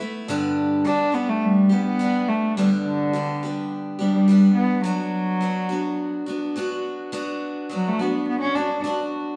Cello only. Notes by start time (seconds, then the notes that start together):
0.86 D4
1.14 B3
1.29 A3
1.44 G3
1.72 B3
1.85 B3
2.28 A3
2.56 G3
2.85 D3
4.00 G3
4.13 G3
4.55 B3
4.85 F#3
7.75 F#3
7.88 A3
8.01 B3
8.28 B3
8.41 C#4
8.55 D4